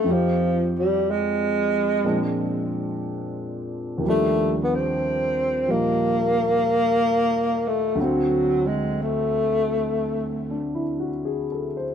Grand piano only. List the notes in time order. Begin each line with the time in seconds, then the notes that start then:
0.04 F2 F3 C4 D#4
0.09 G4
2.04 A#2 F3 G#3 C4 D4
3.98 D#2 D#3
4.03 F3 G3
4.09 D4
5.67 A#2 F3 G3 D#4
7.95 D2 D3 F#3
8.01 C4
10.50 D4
10.75 E4
11.00 F#4
11.25 G#4
11.52 A4
11.77 C5